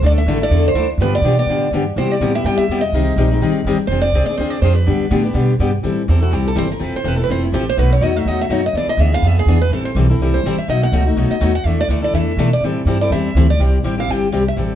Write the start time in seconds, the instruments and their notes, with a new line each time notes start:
0.02 upright bass D2, steel-string acoustic guitar D3 A3 D4 E4 A4
0.06 steel-string acoustic guitar D5
0.18 steel-string acoustic guitar E5
0.26 upright bass A1, steel-string acoustic guitar D3 A3 D4 E4 A4
0.41 steel-string acoustic guitar D4 E4 A4 D5
0.50 upright bass E2, steel-string acoustic guitar D3 A3 D4 E4 A4
0.68 steel-string acoustic guitar C5
0.74 upright bass D2, steel-string acoustic guitar D3 A3 D4 E4 A4
0.98 upright bass G2, steel-string acoustic guitar D3 F3 B3 D4 G4 B4
1.15 steel-string acoustic guitar D5
1.21 upright bass B2, steel-string acoustic guitar D3 F3 B3 D4 G4
1.38 steel-string acoustic guitar B3 D4 G4 D5
1.46 upright bass A2, steel-string acoustic guitar D3 F3
1.50 steel-string acoustic guitar B3 D4 G4
1.71 upright bass G2, steel-string acoustic guitar D3 F3 B3 D4 G4
1.96 upright bass C3, steel-string acoustic guitar C3 G3 B3 E4 G4 C5
2.11 steel-string acoustic guitar D5
2.20 upright bass A2, steel-string acoustic guitar C3 G3 B3 E4 G4
2.34 steel-string acoustic guitar B3 E4 G4 E5
2.44 upright bass G2, steel-string acoustic guitar C3 G3 B3 E4 G4 G5
2.58 steel-string acoustic guitar E5, muted upright bass stroke
2.68 upright bass E2, steel-string acoustic guitar C3 G3 B3 E4 G4
2.81 steel-string acoustic guitar D#5
2.92 upright bass C2, steel-string acoustic guitar D#3 G3 C4 D#4 G#4
3.16 upright bass A#1, steel-string acoustic guitar D#3 G3 C4 D#4 G#4
3.31 steel-string acoustic guitar C4 D#4 G#4
3.41 upright bass G#1, steel-string acoustic guitar D#3 G3 C4 D#4 G#4
3.64 upright bass G1, steel-string acoustic guitar D#3 G3 C4 D#4 G#4
3.78 muted upright bass stroke
3.87 upright bass F1, steel-string acoustic guitar C5
3.91 steel-string acoustic guitar F3 C4 D4 G#4
4.01 steel-string acoustic guitar D5
4.12 upright bass C2, steel-string acoustic guitar F3 C4 D4 G#4
4.26 steel-string acoustic guitar D4 G#4 D5, muted upright bass stroke
4.30 steel-string acoustic guitar C4
4.37 upright bass D2, steel-string acoustic guitar F3 C4 D4 G#4 C5
4.50 steel-string acoustic guitar D5
4.61 upright bass F2, steel-string acoustic guitar F3 C4 D4 G#4 C5
4.75 steel-string acoustic guitar B4
4.86 upright bass G2, steel-string acoustic guitar D3 G3 B3 D4 G4
4.99 muted upright bass stroke
5.11 upright bass A2, steel-string acoustic guitar D3 G3 B3 D4 G4
5.23 steel-string acoustic guitar B3 D4 G4
5.34 upright bass B2, steel-string acoustic guitar D3 G3 B3 D4 G4
5.59 upright bass G2, steel-string acoustic guitar D3 G3 B3 D4 G4
5.83 upright bass A2, steel-string acoustic guitar E3 G3 C4 E4 A4
6.08 upright bass E2, steel-string acoustic guitar E3 G3 C4 E4 A4
6.20 steel-string acoustic guitar C4 E4 F#4 A4
6.31 upright bass C2, steel-string acoustic guitar E3 G3 C4 E4 G4 A4
6.47 steel-string acoustic guitar A4
6.55 upright bass G1, steel-string acoustic guitar E3 G3 C4 E4 A4 C5
6.72 steel-string acoustic guitar A#4
6.79 upright bass F1, steel-string acoustic guitar F3 C4 E4 A4
6.83 steel-string acoustic guitar B4
6.93 steel-string acoustic guitar C5, muted upright bass stroke
7.04 upright bass E1, steel-string acoustic guitar F3 C4 E4 A4 B4
7.16 steel-string acoustic guitar C4 E4 A4
7.24 steel-string acoustic guitar B4
7.28 upright bass F1, steel-string acoustic guitar F3 C4 E4 A4 C5
7.45 steel-string acoustic guitar E4
7.52 upright bass A1, steel-string acoustic guitar F3 C4 E4 G4 A4
7.69 steel-string acoustic guitar C5
7.77 upright bass B1, steel-string acoustic guitar B2 F#3 A3 D#4 F#4 B4
7.93 steel-string acoustic guitar C#5
8.01 upright bass E2, steel-string acoustic guitar B2 F#3 A3 D#4 F#4 D#5
8.15 steel-string acoustic guitar A3 D#4 F#4 E5
8.25 upright bass D#2, steel-string acoustic guitar B2 F#3 A3 D#4 F#4 D#5
8.41 steel-string acoustic guitar E5
8.50 upright bass F#2, steel-string acoustic guitar B2 F#3 A3 D#4 F#4 C#5
8.66 steel-string acoustic guitar D#5
8.73 upright bass E2, steel-string acoustic guitar E3 B3 D4 G#4
8.77 steel-string acoustic guitar D5
8.87 steel-string acoustic guitar D#5, muted upright bass stroke
8.97 upright bass D2, steel-string acoustic guitar E3 B3 D4 G#4 E5
9.12 steel-string acoustic guitar B3 D4 G#4 F5
9.22 upright bass F2, steel-string acoustic guitar E3 B3 D4 G#4
9.27 steel-string acoustic guitar E5
9.39 steel-string acoustic guitar G#4
9.46 upright bass E2, steel-string acoustic guitar E3 B3 D4 G#4
9.61 steel-string acoustic guitar B4
9.70 upright bass A1, steel-string acoustic guitar E3 G3 C4 E4 A4
9.74 steel-string acoustic guitar A4
9.85 steel-string acoustic guitar C5
9.95 upright bass B1, steel-string acoustic guitar E3 G3 C4 E4 A4
10.09 steel-string acoustic guitar C4 E4 A4
10.19 upright bass C2, steel-string acoustic guitar E3 G3 C4 E4 A4
10.34 steel-string acoustic guitar C5
10.44 upright bass A1, steel-string acoustic guitar E3 G3 C4 E4 A4
10.57 steel-string acoustic guitar E5, muted upright bass stroke
10.68 upright bass B1, steel-string acoustic guitar B2 F#3 A3 D#4 F#4 D#5
10.83 steel-string acoustic guitar F#5
10.92 upright bass C#2, steel-string acoustic guitar B2 F#3 A3 D#4 F#4
11.06 steel-string acoustic guitar A3 D#4 F#4
11.16 upright bass B1, steel-string acoustic guitar B2 F#3 A3 D#4 F#4
11.30 steel-string acoustic guitar D#5, muted upright bass stroke
11.40 upright bass D#2, steel-string acoustic guitar B2 F#3 A3 D#4 F#4
11.55 steel-string acoustic guitar F#5
11.64 upright bass E2, steel-string acoustic guitar E3 A3 D4 E4 A4 E5
11.81 steel-string acoustic guitar D5
11.89 upright bass D2, steel-string acoustic guitar E3 A3 D4 E4 A4
12.02 steel-string acoustic guitar D4 E4 A4 D5
12.13 upright bass E2, steel-string acoustic guitar E3 A3 D4 E4 A4 E5
12.37 upright bass B2, steel-string acoustic guitar E3 A3 D4 E4 A4
12.53 steel-string acoustic guitar D5
12.60 upright bass A2, steel-string acoustic guitar E3 G3 C4 E4 A4
12.85 upright bass G2, steel-string acoustic guitar E3 G3 C4 E4 A4
13.01 steel-string acoustic guitar C4 E4 A4 D5
13.10 upright bass E2, steel-string acoustic guitar E3 G3 C4 E4 A4 E5
13.35 upright bass D2, steel-string acoustic guitar E3 G3 C4 E4 A4
13.50 steel-string acoustic guitar D5
13.59 upright bass C2, steel-string acoustic guitar C3 G3 C4 E4 G4
13.84 upright bass A1, steel-string acoustic guitar C3 G3 C4 E4 G4
13.98 steel-string acoustic guitar C4 E4 G4 F5
14.08 upright bass G1, steel-string acoustic guitar C3 G3 C4 E4 G4 G5
14.32 upright bass C2, steel-string acoustic guitar C3 G3 C4 E4 G4
14.48 steel-string acoustic guitar E5
14.56 upright bass A1, steel-string acoustic guitar E3 G3 C4 E4 A4